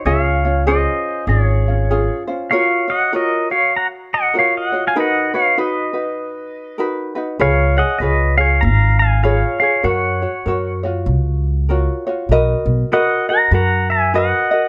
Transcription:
X:1
M:4/4
L:1/16
Q:"Swing" 1/4=98
K:Db
V:1 name="Pedal steel guitar"
[df]4 [ce]4 [Ad]6 z2 | [K:F#] [ce]2 [df]2 [Ad]2 [ce]2 [fa]2 [df]2 [ce] [df]2 [eg] | [df]2 [ce]2 [Bd]8 z4 | [ce]2 [df]2 [Bd]2 [ce]2 [ea]2 [eg]2 [ce]2 [ce]2 |
[cf]6 z8 z2 | [K:B] z4 [df]2 [fa]2 [fa]2 [eg]2 [df]4 |]
V:2 name="Ukulele"
[DFA]2 [DF]2 [DFAc]4 [DFA]2 [DF]2 [DFA]2 [DFc]2 | [K:F#] [EFAc]2 [Fc]2 [EFAc]2 [Fc]6 [EFAc]2 [EFc]2 | [DFAB]2 [DFB]2 [DFB]2 [DFB]6 [DFAB]2 [DFB]2 | [EGBc]2 [Gc]2 [EGBc]2 [EGc]6 [EGBc]2 [EGc]2 |
[FAc]2 [Fc]2 [FAc]2 [EFc]6 [EFAc]2 [EFc]2 | [K:B] [FABd]4 [FABd]2 [FAd]2 [FAB]4 [FABd]2 [FAd]2 |]
V:3 name="Upright bass" clef=bass
D,,8 A,,,8 | [K:F#] z16 | z16 | C,,4 C,,4 G,,,8 |
F,,4 F,,4 C,,8 | [K:B] B,,,2 B,,,2 z4 F,,8 |]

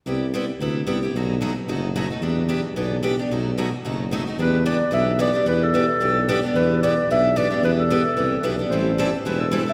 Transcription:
X:1
M:4/4
L:1/8
Q:"Swing" 1/4=222
K:Bphr
V:1 name="Clarinet"
z8 | z8 | z8 | z8 |
[K:Em] B2 d2 e2 d2 | B A6 z | B2 d2 e2 d2 | B A6 z |
c3 z B A2 e |]
V:2 name="Steel-string acoustic guitar"
[C,G,B,EG] z [C,G,B,EG] z [C,G,B,EG] z [C,G,B,EG] [B,EG] | [B,,F,A,^DF] z [B,,F,A,DF] z [B,,F,A,DF] z [B,,F,A,DF] [A,DF] | [E,B,DG] z [E,B,DG] z [E,B,DG] z [E,B,DG] [B,DG] | [B,,F,A,^DF] z [B,,F,A,DF] z [B,,F,A,DF] z [B,,F,A,DF] [A,DF] |
[K:Em] [E,B,DG] z [E,B,DG] z [E,B,DG] z [E,B,DG] [B,DG] | [E,B,DG] z [E,B,DG] z [E,B,DG] z [E,B,DG] [B,DG] | [E,B,DG] z [E,B,DG] z [E,B,DG] z [E,B,DG] [B,DG] | [E,B,DG] z [E,B,DG] z [E,B,DG] z [E,B,DG] [B,DG] |
[E,G,CEA] z [E,G,CEA] z [E,G,CEA] z [E,G,CEA] [CEA] |]
V:3 name="Tuba" clef=bass
C,,4 D,,2 C,,2 | B,,,4 F,,,4 | E,,4 B,,,4 | B,,,4 F,,,4 |
[K:Em] E,,4 B,,,4 | E,,4 B,,,4 | E,,4 B,,,4 | E,,4 C,,2 B,,,2 |
A,,,4 E,,,4 |]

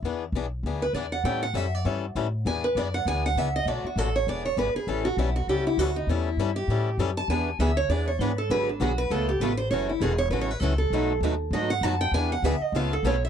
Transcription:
X:1
M:4/4
L:1/8
Q:"Swing" 1/4=198
K:Emix
V:1 name="Steel-string acoustic guitar"
z4 z B d f | =g f e d c z3 | g B d f g f e ^d | d F A c d c B G |
A F E F =G E F ^D | E3 =G3 z a | g2 e c d c B A | B D F B A =G B =c |
c E G c (3B c B A A- | A2 z2 ^d f a =g | g f e ^d ^e A c =e |]
V:2 name="Steel-string acoustic guitar"
z8 | z8 | z8 | z8 |
z8 | z8 | [E,B,DGB] z [E,B,DGB] z [E,B,DGB] z [E,B,DGB] z | [D,F,B,FG] z [D,F,B,FG] z [C,A,B,^EA] z [C,A,B,EA] z |
[F,CEA] z [F,CEA] z [F,CEA] z [F,CEA] z | [B,,F,A,^DFB] z [B,,F,A,DFB] z [B,,F,A,DFB] z [B,,F,A,DFB] z | [E,B,DGB] z [E,B,DGB] z [C,A,B,^EA] z [C,A,B,EA] z |]
V:3 name="Steel-string acoustic guitar"
[E,B,DG] z [E,B,DG] z [E,B,DG] z [E,B,DG] z | [E,=G,CEA] z [E,G,CEA] z [E,G,CEA] z [E,G,CEA] z | [E,B,DG] z [E,B,DG] z [E,B,DG] z [E,B,DG] z | [B,,F,A,DF] z [B,,F,A,DF] z [E,B,DG] z [E,B,DG] z |
[E,=G,CEA] z [E,G,CEA] z [E,G,CEA] z [E,G,CEA] z | [E,=G,CEA] z [E,G,CEA] z [E,G,CEA] z [E,G,CEA] z | [E,B,DG] z [E,B,DG] z [E,B,DG] z [E,B,DG] z | [D,F,B,FG] z [D,F,B,FG] z [C,A,B,^EA] z [C,A,B,EA] z |
[C,E,A,CF] z [C,E,A,CF] z [C,E,A,CF] z [C,E,A,CF] z | [B,,F,A,^DF] z [B,,F,A,DF] z [B,,F,A,DF] z [B,,F,A,DF] z | [E,B,DG] z [E,B,DG] z [C,A,B,^EA] z [C,A,B,EA] z |]
V:4 name="Upright bass" clef=bass
E,,2 B,,,2 D,,2 E,,2 | A,,2 F,,2 =G,,2 A,,2 | E,,2 F,,2 D,,2 C,,2 | B,,, z A,,,2 E,,,2 G,,, z |
A,,,2 B,,,2 C,,2 D,,2 | E,,2 =G,,2 A,,2 F,,2 | E,,2 D,,2 E,,2 G,,2 | G,,,2 B,,,2 C,,2 A,,,2 |
F,,,2 E,,,2 A,,,2 C,,2 | B,,,2 ^D,,2 G,,2 F,,2 | E,,2 D,, z C,,2 B,,,2 |]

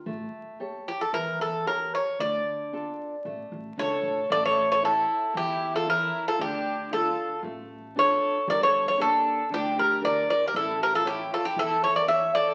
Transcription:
X:1
M:4/4
L:1/16
Q:1/4=115
K:Aphr
V:1 name="Bouzouki"
z6 G A B2 A2 B2 ^c2 | d12 ^c4 | d ^c2 c A4 G3 A B3 A | G4 A4 z4 ^c4 |
d ^c2 c A4 G2 B2 d2 d3/2 B/2 | A2 B A G2 A G A2 ^c d e2 d2 |]
V:2 name="Violin"
z16 | z12 A4 | A A2 A E4 E3 F E3 F | D4 F4 z4 A4 |
B A2 A D4 D2 G2 B2 B3/2 G/2 | E2 G F E2 F E E2 A B ^c2 A2 |]
V:3 name="Nylon-string guitar"
A,4 [GA^c]4 E,4 [GAc]4 | D,4 [DFA]4 A,4 [DFA]4 | A,4 [EA^c]4 E,4 [Ec]4 | D,4 [DFA]4 A,4 [DFA]4 |
G,4 [B,DG]4 D,4 [DGB]4 | A,4 [EA^c]4 E,4 [EAc]4 |]
V:4 name="Upright bass" clef=bass
A,,,2 z6 E,,2 E,,6 | D,,2 z6 A,,,2 A,,,2 ^C,,2 A,,,2 | A,,,8 E,,8 | D,,8 A,,,8 |
G,,,8 D,,8 | A,,,8 E,,8 |]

